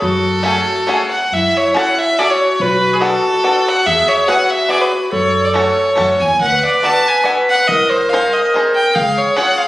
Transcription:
0.00 0.58 F#2 medium
0.00 0.42 F#4 medium
0.00 1.06 A4 medium
0.43 0.67 A3 medium
0.43 0.67 C#4 medium
0.43 0.67 F#4 soft
0.43 1.08 F#4 medium
0.43 0.68 G#4 medium
0.87 1.11 A3 medium
0.87 1.11 C#4 medium
0.87 1.11 F#4 medium
0.87 1.12 G#4 medium
1.11 1.34 F#5 medium
1.32 1.47 F#2 medium
1.32 2.21 E4 medium
1.32 1.58 E5 medium
1.57 1.80 C#5 medium
1.74 1.98 C#4 medium
1.74 1.98 E4 soft
1.74 1.98 F#4 soft
1.74 1.99 A4 medium
1.74 1.94 F#5 medium
1.94 2.00 F#5 medium
1.99 2.20 E5 medium
2.19 2.41 C#4 medium
2.19 2.41 E4 soft
2.19 2.61 F#4 medium
2.19 2.41 F#4 soft
2.19 2.42 A4 medium
2.19 2.32 D5 medium
2.30 2.63 C#5 medium
2.60 3.15 B1 medium
2.60 3.88 F#4 medium
2.60 2.95 B4 medium
2.93 3.03 G#4 medium
3.00 3.24 B3 medium
3.00 3.24 D4 medium
3.00 3.24 F#4 medium
3.00 3.70 A4 medium
3.00 3.24 A4 medium
3.44 3.66 B3 medium
3.44 3.66 D4 medium
3.44 3.67 F#4 soft
3.44 3.67 A4 medium
3.68 3.88 F#5 medium
3.86 4.01 E2 medium
3.86 4.29 G#4 medium
3.86 4.10 E5 medium
4.08 4.29 C#5 medium
4.28 4.50 B3 medium
4.28 4.51 E4 soft
4.28 5.13 F#4 medium
4.28 4.51 F#4 medium
4.28 4.51 G#4 medium
4.28 4.51 F#5 medium
4.50 4.71 E5 medium
4.69 4.92 B3 medium
4.69 4.92 E4 soft
4.69 4.93 F#4 soft
4.69 4.93 G#4 medium
4.69 4.83 D5 loud
4.81 5.12 B4 medium
5.11 5.68 F#2 medium
5.11 6.20 A4 medium
5.11 5.46 C#5 medium
5.45 5.55 D5 medium
5.53 5.77 A3 medium
5.53 5.78 C#4 soft
5.53 5.78 F#4 medium
5.53 5.78 A4 medium
5.53 6.21 C#5 medium
5.95 6.19 F#2 medium
5.95 6.20 A3 medium
5.95 6.20 C#4 soft
5.95 6.20 F#4 soft
5.95 6.21 A4 medium
6.20 6.38 E2 medium
6.20 6.40 G#5 medium
6.40 6.55 D2 medium
6.40 7.71 B4 medium
6.40 6.62 F#5 medium
6.66 6.86 D5 medium
6.83 7.07 B3 medium
6.83 7.07 D4 medium
6.83 7.07 F#4 medium
6.83 7.08 A4 medium
6.83 7.09 A5 medium
7.08 7.27 G#5 medium
7.24 7.48 B3 medium
7.24 7.48 D4 medium
7.24 7.49 F#4 medium
7.24 7.49 A4 medium
7.50 7.69 F#5 medium
7.67 8.23 C2 medium
7.67 8.96 A#4 loud
7.67 7.92 D#5 medium
7.90 8.11 C5 medium
8.09 8.35 C4 medium
8.09 8.35 D#4 medium
8.09 8.35 F5 medium
8.13 8.35 G#4 medium
8.13 8.35 C5 medium
8.33 8.53 D#5 medium
8.54 8.76 C4 medium
8.54 8.77 D#4 soft
8.54 8.77 G#4 medium
8.54 8.77 C5 medium
8.75 8.97 G5 medium
8.95 9.10 C#2 medium
8.95 9.68 G#4 medium
8.95 9.19 F5 medium
9.18 9.38 C#5 medium
9.36 9.59 C#4 medium
9.36 9.59 F4 medium
9.36 9.59 G#4 medium
9.36 9.60 C#5 medium
9.36 9.59 F#5 medium
9.58 9.68 F5 medium

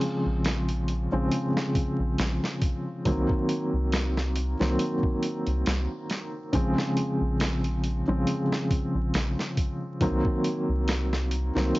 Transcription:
0.00 1.06 C#3 medium
0.00 1.06 F3 medium
0.00 1.07 G#3 medium
0.00 1.07 C4 medium
0.00 closed hi-hat medium
0.26 1.08 A#1 loud
0.45 snare loud
0.45 closed hi-hat medium
0.69 closed hi-hat soft
0.88 closed hi-hat medium
1.12 1.29 A#1 medium
1.12 1.47 C#3 medium
1.12 1.47 F3 medium
1.12 1.47 G#3 medium
1.12 1.47 C4 medium
1.31 closed hi-hat medium
1.57 snare soft
1.75 kick medium
1.75 closed hi-hat medium
1.99 2.16 A#1 medium
2.18 2.40 A#1 medium
2.18 snare loud
2.18 closed hi-hat medium
2.44 snare soft
2.62 kick medium
2.62 closed hi-hat medium
3.05 3.27 C2 medium
3.05 4.54 D#3 medium
3.05 4.54 F#3 medium
3.05 4.55 A#3 medium
3.05 4.55 C4 medium
3.05 kick loud
3.05 closed hi-hat medium
3.29 kick medium
3.49 closed hi-hat medium
3.73 4.55 C2 loud
3.92 snare loud
3.92 closed hi-hat medium
4.17 snare soft
4.36 closed hi-hat medium
4.60 4.77 C2 medium
4.60 4.94 D#3 medium
4.60 4.95 F#3 medium
4.60 4.95 A#3 medium
4.60 4.95 C4 medium
4.60 snare soft
4.79 closed hi-hat medium
5.03 kick medium
5.23 closed hi-hat medium
5.47 5.64 C2 medium
5.47 closed hi-hat soft
5.66 5.88 C2 medium
5.66 snare loud
5.66 closed hi-hat medium
6.10 snare soft
6.10 closed hi-hat medium
6.53 6.74 A#1 medium
6.53 8.02 C#3 medium
6.53 8.02 F3 medium
6.53 8.02 G#3 medium
6.53 8.03 C4 medium
6.53 kick loud
6.53 closed hi-hat medium
6.78 snare medium
6.97 closed hi-hat medium
7.21 8.03 A#1 loud
7.40 snare loud
7.40 closed hi-hat medium
7.64 closed hi-hat soft
7.84 closed hi-hat medium
8.08 8.25 A#1 medium
8.08 8.42 C#3 medium
8.08 8.42 F3 medium
8.08 8.43 G#3 medium
8.08 8.43 C4 medium
8.27 closed hi-hat medium
8.52 snare medium
8.70 kick medium
8.70 closed hi-hat medium
8.95 9.12 A#1 medium
9.14 9.35 A#1 medium
9.14 snare loud
9.14 closed hi-hat medium
9.39 snare soft
9.57 kick medium
9.57 closed hi-hat medium
10.01 10.22 C2 medium
10.01 11.50 D#3 medium
10.01 11.50 F#3 medium
10.01 11.50 A#3 medium
10.01 11.51 C4 medium
10.01 kick loud
10.01 closed hi-hat medium
10.25 kick medium
10.44 closed hi-hat medium
10.69 11.51 C2 loud
10.88 snare loud
10.88 closed hi-hat medium
11.13 snare medium
11.31 closed hi-hat medium
11.55 11.73 C2 medium
11.55 11.79 D#3 medium
11.55 11.79 F#3 medium
11.55 11.79 A#3 medium
11.55 11.79 C4 medium
11.55 snare soft
11.75 closed hi-hat medium

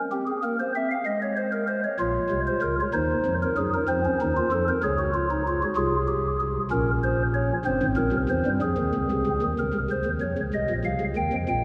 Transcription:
0.12 0.31 C4 medium
0.12 0.25 G4 medium
0.27 0.40 G#4 medium
0.43 0.63 A#3 medium
0.43 0.57 A#4 medium
0.60 0.72 C5 medium
0.76 0.94 C4 medium
0.76 0.88 E5 medium
0.91 1.04 F5 medium
1.05 1.86 G#3 medium
1.05 1.19 D#5 medium
1.22 1.35 C#5 medium
1.37 1.50 C5 medium
1.52 1.66 A#4 medium
1.68 1.81 C5 medium
1.84 1.97 C#5 medium
1.99 2.19 A#1 medium
1.99 2.19 A#2 medium
1.99 2.80 F4 medium
1.99 2.40 C#5 medium
2.30 2.50 C2 medium
2.30 2.50 C3 medium
2.47 2.60 C5 medium
2.62 2.82 C#2 medium
2.62 2.81 C#3 medium
2.62 2.76 A#4 medium
2.80 2.93 C#5 medium
2.94 3.13 D#2 medium
2.94 3.13 D#3 medium
2.94 3.74 D#4 medium
2.94 3.34 C5 medium
3.26 3.45 F2 medium
3.26 3.45 F3 medium
3.43 3.55 A#4 medium
3.57 3.77 F#2 medium
3.57 3.77 F#3 medium
3.57 3.70 G#4 medium
3.74 3.86 A#4 medium
3.88 4.08 F2 medium
3.88 4.08 F3 medium
3.88 4.01 C4 medium
3.88 4.69 C5 medium
4.05 4.18 C#4 medium
4.21 4.40 D#2 medium
4.21 4.40 D#3 medium
4.21 4.34 D#4 medium
4.37 4.49 F4 medium
4.52 4.71 F2 medium
4.52 4.71 F3 medium
4.52 4.65 A4 medium
4.68 4.81 A#4 medium
4.83 5.64 C#2 medium
4.83 5.64 C#3 medium
4.83 4.96 G#4 medium
4.83 5.64 C#5 medium
4.99 5.12 F#4 medium
5.14 5.27 F4 medium
5.31 5.44 D#4 medium
5.48 5.60 F4 medium
5.63 5.75 F#4 medium
5.76 6.58 C2 medium
5.76 6.58 C3 medium
5.76 5.96 F4 medium
5.76 6.38 G#4 medium
6.08 6.27 G4 medium
6.40 6.60 G#4 medium
6.71 7.52 A#1 medium
6.71 7.52 A#2 medium
6.71 7.53 C#4 medium
6.71 6.91 A#4 medium
7.03 7.23 C5 medium
7.34 7.54 C#5 medium
7.65 7.79 G1 medium
7.65 7.79 G2 medium
7.65 9.30 C4 medium
7.65 7.85 C5 medium
7.83 7.96 G#1 medium
7.83 7.96 G#2 medium
7.97 8.11 A#1 medium
7.97 8.11 A#2 medium
7.97 8.17 A#4 medium
8.12 8.26 C2 medium
8.12 8.27 C3 medium
8.29 8.43 E2 medium
8.29 8.43 E3 medium
8.29 8.49 C5 medium
8.46 8.59 G2 medium
8.46 8.59 G3 medium
8.62 8.75 F2 medium
8.62 8.75 F3 medium
8.62 9.44 G#4 medium
8.77 8.91 D#2 medium
8.77 8.91 D#3 medium
8.94 9.08 C#2 medium
8.94 9.07 C#3 medium
9.11 9.24 C2 medium
9.11 9.24 C3 medium
9.26 9.40 C#2 medium
9.26 9.39 C#3 medium
9.42 9.55 D#2 medium
9.42 9.55 D#3 medium
9.59 9.72 C#2 medium
9.59 9.72 C#3 medium
9.59 9.78 A#4 medium
9.74 9.87 C2 medium
9.74 9.87 C3 medium
9.90 10.03 C#2 medium
9.90 10.04 C#3 medium
9.90 10.10 C5 medium
10.05 10.18 D#2 medium
10.05 10.19 D#3 medium
10.20 10.35 F2 medium
10.20 10.34 F3 medium
10.20 10.41 C#5 medium
10.38 10.51 C#2 medium
10.38 10.51 C#3 medium
10.54 10.67 C2 medium
10.54 10.67 C3 medium
10.54 10.73 D#5 medium
10.70 10.83 A#1 medium
10.70 10.83 A#2 medium
10.85 10.98 C2 medium
10.85 10.98 C3 medium
10.85 11.04 F5 medium
11.00 11.14 C#2 medium
11.00 11.14 C#3 medium
11.16 11.29 D#2 medium
11.16 11.29 D#3 medium
11.16 11.36 G5 medium
11.33 11.46 F2 medium
11.33 11.46 F3 medium
11.49 11.64 A#1 medium
11.49 11.64 A#2 medium
11.49 11.64 G5 medium

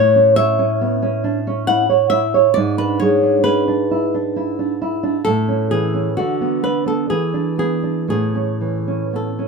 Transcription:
0.00 2.51 A2 medium
0.00 0.33 C#5 medium
0.15 0.50 C#4 medium
0.36 0.72 C#5 medium
0.36 1.63 E5 medium
0.59 0.94 C#4 medium
0.81 1.03 B3 soft
1.02 1.37 C#4 medium
1.24 1.46 D4 soft
1.47 1.81 C#4 medium
1.67 1.89 E4 medium
1.67 2.07 F#5 medium
1.89 2.24 C#5 soft
2.10 2.46 E4 medium
2.10 2.51 E5 medium
2.34 2.56 C#5 medium
2.54 5.22 G#2 medium
2.54 2.75 D5 medium
2.78 3.13 D4 soft
2.78 2.98 B4 medium
3.00 3.36 G#3 medium
3.00 3.41 C#5 medium
3.23 3.58 D4 soft
3.44 3.67 C#4 soft
3.44 5.21 B4 medium
3.68 4.04 D4 soft
3.91 4.13 E4 soft
4.14 4.50 D4 soft
4.36 4.72 E4 soft
4.59 4.94 D4 soft
4.82 5.17 E4 soft
5.03 5.25 D4 soft
5.25 6.14 A2 medium
5.25 5.67 A4 medium
5.48 5.85 C#4 soft
5.71 6.08 E3 soft
5.71 6.14 G#4 medium
5.94 6.17 C#4 soft
6.17 7.08 D3 medium
6.17 6.60 F#4 medium
6.41 6.78 B3 soft
6.63 7.01 D4 soft
6.63 6.85 B4 medium
6.86 7.10 B3 soft
6.86 7.09 A4 medium
7.10 8.07 E3 soft
7.10 7.55 G#4 medium
7.34 7.73 D4 soft
7.58 7.99 B3 soft
7.58 8.07 G#4 medium
7.83 8.10 D4 soft
8.08 9.48 A2 soft
8.08 9.10 G#4 medium
8.35 8.77 C#4 soft
8.61 9.03 E3 soft
8.87 9.29 C#4 soft
9.13 9.39 B3 soft
9.13 9.48 A4 soft
9.39 9.48 C#4 soft

